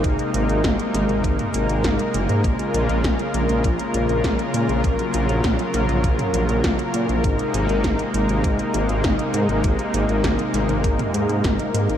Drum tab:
HH |xxxxxxxxxxxxxxxx|xxxxxxxxxxxxxxxx|xxxxxxxxxxxxxxxx|xxxxxxxxxxxxxxxx|
SD |----o-o-----o---|----o-------o---|----o-o-----o---|----o-------o---|
T2 |-------o-o------|----------------|-------o-o------|----------------|
BD |o---o---o---o---|o---o---o---o---|o---o---o---o---|o---o---o---o---|

HH |xxxxxxxxxxxxxxxx|
SD |----o-o-----o---|
T2 |-------o-o------|
BD |o---o---o---o---|